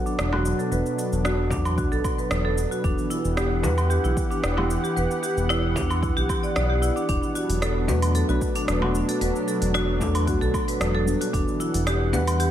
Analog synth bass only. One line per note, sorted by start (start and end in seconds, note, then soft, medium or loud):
0.19 0.53 E1 medium
0.72 0.82 E1 loud
1.12 1.53 E1 medium
1.51 1.86 E2 medium
1.92 2.01 B1 medium
2.31 2.65 E1 medium
2.84 2.94 E1 loud
3.25 3.65 E1 loud
3.64 3.98 E2 medium
4.04 4.13 B1 medium
4.43 4.78 E1 medium
4.97 5.07 E1 loud
5.37 5.78 E1 loud
5.76 6.11 E2 medium
6.17 6.26 B1 loud
6.56 6.90 B1 medium
7.09 7.19 E1 loud
7.49 7.90 E1 loud
7.89 8.23 E2 medium
8.29 8.38 B1 medium
8.68 9.02 E1 medium
9.21 9.31 E1 loud
9.62 10.02 E1 loud
10.01 10.35 E2 medium
10.41 10.50 B1 medium
10.81 11.15 E1 medium
11.34 11.44 E1 loud
11.74 12.15 E1 loud
12.13 12.48 E2 medium